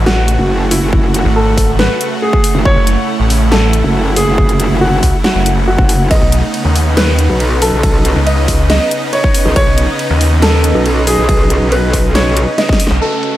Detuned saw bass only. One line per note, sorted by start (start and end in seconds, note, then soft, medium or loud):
0.00 0.37 A1 loud
1.25 1.88 G#1 loud
2.76 2.96 F#1 loud
3.19 3.82 A1 medium
5.03 5.12 C#2 loud
5.35 5.77 F#1 loud
6.22 6.41 B1 medium
6.65 7.28 D#2 loud
8.16 8.79 C#2 loud
9.67 9.87 B1 loud
10.10 10.73 D#2 loud
12.91 13.00 B1 medium